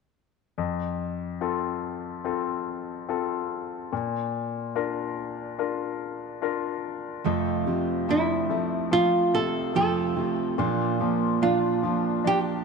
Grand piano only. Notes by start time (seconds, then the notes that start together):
0.58 F2
1.41 C4 F4 A4
2.24 C4 F4 A4
3.09 C4 F4 A4
3.93 A#2
4.75 D4 F4 A#4
5.59 D4 F4 A#4
6.42 D4 F4 A#4
7.26 F2
7.67 C3
8.09 F3
8.50 A3
8.91 F3
9.34 C3
9.75 F3
10.17 C3
10.58 A#2
11.01 F3
11.42 D4
11.83 F3
12.24 D4